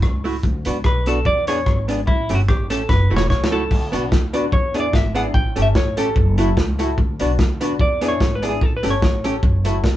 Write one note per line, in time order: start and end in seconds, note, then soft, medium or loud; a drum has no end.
0.02 0.37 C#2 medium
0.02 kick loud
0.02 cross-stick loud
0.24 0.35 A3 medium
0.24 0.35 E4 medium
0.24 0.36 F#4 medium
0.24 open hi-hat soft
0.43 0.62 D2 loud
0.43 kick loud
0.43 hi-hat pedal medium
0.65 0.85 C#2 loud
0.65 0.76 B3 medium
0.65 0.77 D4 medium
0.65 0.77 F#4 medium
0.65 closed hi-hat medium
0.84 1.19 B1 medium
0.84 1.08 B4 medium
0.84 kick loud
0.84 cross-stick loud
1.06 1.17 B3 medium
1.06 1.18 D4 medium
1.06 1.18 F#4 loud
1.06 1.26 A4 medium
1.06 closed hi-hat medium
1.25 1.68 E2 loud
1.25 1.46 D5 loud
1.25 muted hollow-body jazz guitar stroke soft
1.25 kick loud
1.47 1.58 B3 medium
1.47 1.59 D4 loud
1.47 1.59 G#4 loud
1.47 1.86 C#5 loud
1.47 closed hi-hat loud
1.66 2.01 G#1 medium
1.66 kick loud
1.66 cross-stick medium
1.88 1.99 B3 medium
1.88 1.99 D4 medium
1.88 2.00 G#4 medium
1.88 closed hi-hat medium
2.07 2.26 A1 loud
2.07 2.35 E4 medium
2.07 kick loud
2.29 2.46 G1 loud
2.29 2.40 A3 medium
2.29 2.40 C#4 medium
2.29 2.41 G4 medium
2.29 closed hi-hat medium
2.35 2.40 F#4 medium
2.48 2.83 A1 medium
2.48 2.70 G4 medium
2.48 kick loud
2.48 cross-stick loud
2.70 2.81 A3 medium
2.70 2.81 C#4 loud
2.70 2.81 G4 medium
2.70 2.90 A4 medium
2.70 closed hi-hat loud
2.89 3.08 F#1 loud
2.89 3.16 B4 loud
2.89 muted hollow-body jazz guitar stroke soft
2.89 kick loud
2.89 snare medium
3.10 3.28 E1 medium
3.10 3.21 A3 medium
3.10 3.22 E4 loud
3.10 3.22 F#4 medium
3.16 3.29 C#5 medium
3.16 snare loud
3.30 3.65 C#2 medium
3.30 3.53 C#5 medium
3.30 kick loud
3.30 snare medium
3.44 snare loud
3.51 3.62 A3 medium
3.51 3.63 E4 medium
3.51 3.63 F#4 loud
3.51 3.90 A4 medium
3.71 3.90 D2 loud
3.71 kick loud
3.71 splash medium
3.92 4.09 B1 medium
3.92 4.03 B3 medium
3.92 4.07 D4 medium
3.92 4.03 D4 medium
3.92 4.07 F#4 medium
3.92 4.04 F#4 medium
3.92 4.07 B4 loud
3.92 closed hi-hat medium
4.12 4.47 D2 medium
4.12 kick loud
4.12 snare loud
4.33 4.44 B3 medium
4.33 4.48 D4 medium
4.33 4.44 D4 loud
4.33 4.48 F#4 medium
4.33 4.45 F#4 loud
4.33 4.48 B4 loud
4.33 closed hi-hat medium
4.52 4.87 E2 loud
4.52 4.57 E4 soft
4.52 4.57 G#4 soft
4.52 4.78 C#5 medium
4.52 muted hollow-body jazz guitar stroke soft
4.52 kick loud
4.74 4.85 B3 medium
4.74 4.88 D4 medium
4.74 4.85 D4 medium
4.74 4.89 E4 medium
4.74 4.89 G#4 medium
4.74 4.86 G#4 loud
4.74 closed hi-hat loud
4.80 4.94 D5 medium
4.93 5.28 G#1 medium
4.93 4.98 E4 soft
4.93 4.98 G#4 soft
4.93 5.16 E5 loud
4.93 kick loud
4.93 snare loud
5.15 5.26 B3 medium
5.15 5.29 D4 loud
5.15 5.26 D4 medium
5.15 5.30 E4 medium
5.15 5.26 G#4 loud
5.15 5.30 G#4 loud
5.15 5.21 F#5 loud
5.15 closed hi-hat medium
5.34 5.53 A1 loud
5.34 5.62 G5 loud
5.34 kick loud
5.56 5.73 G1 medium
5.56 5.67 A3 medium
5.56 5.70 C#4 medium
5.56 5.67 C#4 medium
5.56 5.71 G4 medium
5.56 5.67 G4 loud
5.56 5.71 A4 loud
5.56 closed hi-hat medium
5.62 5.67 E5 loud
5.75 6.10 A1 medium
5.75 5.96 C#5 medium
5.75 kick loud
5.75 snare loud
5.97 6.08 A3 medium
5.97 6.11 C#4 loud
5.97 6.08 C#4 medium
5.97 6.11 G4 medium
5.97 6.08 G4 loud
5.97 6.35 A4 medium
5.97 6.12 A4 loud
5.97 closed hi-hat loud
6.16 6.51 F#1 loud
6.16 6.21 F#4 soft
6.16 6.21 A4 soft
6.16 muted hollow-body jazz guitar stroke soft
6.16 kick loud
6.37 6.49 A3 loud
6.37 6.52 E4 loud
6.37 6.49 E4 loud
6.37 6.52 F#4 medium
6.37 6.49 F#4 medium
6.37 6.52 A4 loud
6.37 closed hi-hat loud
6.57 6.92 C#2 medium
6.57 kick loud
6.57 snare loud
6.79 6.89 A3 medium
6.79 6.93 E4 medium
6.79 6.90 E4 medium
6.79 6.93 F#4 medium
6.79 6.90 F#4 loud
6.79 6.93 A4 loud
6.79 closed hi-hat medium
6.98 7.17 D2 loud
6.98 kick loud
7.19 7.36 B1 medium
7.19 7.31 B3 medium
7.19 7.34 D4 loud
7.19 7.31 D4 medium
7.19 7.34 F#4 loud
7.19 7.31 F#4 medium
7.19 7.34 B4 medium
7.19 closed hi-hat loud
7.39 7.74 D2 medium
7.39 kick loud
7.39 snare loud
7.60 7.71 B3 loud
7.60 7.75 D4 loud
7.60 7.72 D4 loud
7.60 7.75 F#4 medium
7.60 7.72 F#4 loud
7.60 7.75 B4 loud
7.60 closed hi-hat medium
7.79 8.14 E2 loud
7.79 7.84 E4 soft
7.79 7.84 G#4 soft
7.79 8.08 D5 medium
7.79 muted hollow-body jazz guitar stroke soft
7.79 kick loud
8.01 8.12 B3 loud
8.01 8.15 D4 medium
8.01 8.12 D4 loud
8.01 8.16 E4 medium
8.01 8.16 G#4 loud
8.01 8.13 G#4 loud
8.01 closed hi-hat medium
8.08 8.36 C#5 medium
8.20 8.55 G#1 loud
8.20 kick loud
8.20 snare loud
8.35 8.49 B4 medium
8.42 8.53 B3 medium
8.42 8.56 D4 medium
8.42 8.53 D4 medium
8.42 8.56 E4 medium
8.42 8.57 G#4 loud
8.42 8.53 G#4 medium
8.42 closed hi-hat medium
8.49 8.63 G#4 medium
8.61 8.80 A1 loud
8.61 8.76 A4 loud
8.61 kick loud
8.77 8.88 B4 medium
8.83 8.99 G1 loud
8.83 8.94 A3 medium
8.83 8.97 C#4 loud
8.83 8.94 C#4 medium
8.83 8.97 G4 medium
8.83 8.94 G4 medium
8.83 8.98 A4 loud
8.83 closed hi-hat loud
8.90 9.88 C#5 loud
9.02 9.37 A1 medium
9.02 kick loud
9.02 snare loud
9.24 9.35 A3 medium
9.24 9.38 C#4 medium
9.24 9.35 C#4 loud
9.24 9.38 G4 medium
9.24 9.35 G4 loud
9.24 9.39 A4 loud
9.24 closed hi-hat loud
9.43 9.78 F#1 loud
9.43 9.47 F#4 soft
9.43 9.47 A4 soft
9.43 muted hollow-body jazz guitar stroke soft
9.43 kick loud
9.64 9.76 A3 medium
9.64 9.79 E4 medium
9.64 9.76 E4 medium
9.64 9.79 F#4 medium
9.64 9.76 F#4 loud
9.64 9.79 A4 medium
9.64 closed hi-hat loud
9.84 9.97 C#2 medium
9.84 kick loud
9.84 snare loud